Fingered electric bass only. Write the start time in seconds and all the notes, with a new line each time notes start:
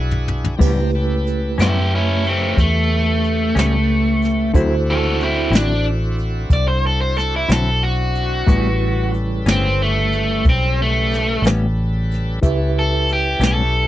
Already playing: B1
0.60 C#2
1.59 F#2
2.57 E2
3.56 C#2
4.54 D2
5.50 A1
6.50 C2
7.49 B1
8.47 A1
9.46 G1
10.45 B1
11.42 A1
12.42 C#2
13.39 B1